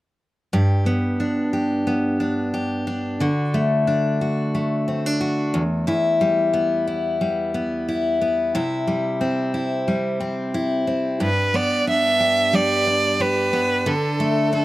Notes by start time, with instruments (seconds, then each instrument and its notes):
0.53 steel-string acoustic guitar G2 G4
0.86 steel-string acoustic guitar B3
1.20 steel-string acoustic guitar D4
1.53 steel-string acoustic guitar G4
1.87 steel-string acoustic guitar B3
2.20 steel-string acoustic guitar D4
2.54 steel-string acoustic guitar G4
2.87 steel-string acoustic guitar D4
3.20 steel-string acoustic guitar D3 F#4
3.54 steel-string acoustic guitar A3
3.87 steel-string acoustic guitar D4
4.21 steel-string acoustic guitar F#4
4.55 steel-string acoustic guitar A3
4.88 steel-string acoustic guitar C4
5.06 steel-string acoustic guitar D4
5.21 steel-string acoustic guitar F#4
5.54 steel-string acoustic guitar E2
5.87 steel-string acoustic guitar E2 E4
6.21 steel-string acoustic guitar G3
6.53 steel-string acoustic guitar B3
6.87 steel-string acoustic guitar E4
7.21 steel-string acoustic guitar G3
7.54 steel-string acoustic guitar B3
7.88 steel-string acoustic guitar E4
8.21 steel-string acoustic guitar B3
8.55 steel-string acoustic guitar C3 E4
8.87 steel-string acoustic guitar G3
9.21 steel-string acoustic guitar C4
9.54 steel-string acoustic guitar E4
9.88 steel-string acoustic guitar G3
10.20 steel-string acoustic guitar C4
10.54 steel-string acoustic guitar E4
10.87 steel-string acoustic guitar C4
11.20 steel-string acoustic guitar G2, violin B4
11.54 steel-string acoustic guitar B3, violin D5
11.87 steel-string acoustic guitar D4, violin E5
12.20 steel-string acoustic guitar G4
12.53 steel-string acoustic guitar G3, violin D5
12.87 steel-string acoustic guitar D4
13.20 steel-string acoustic guitar G4, violin B4
13.53 steel-string acoustic guitar B3
13.86 steel-string acoustic guitar D3, violin A4
14.20 steel-string acoustic guitar A3
14.53 steel-string acoustic guitar D4, violin A4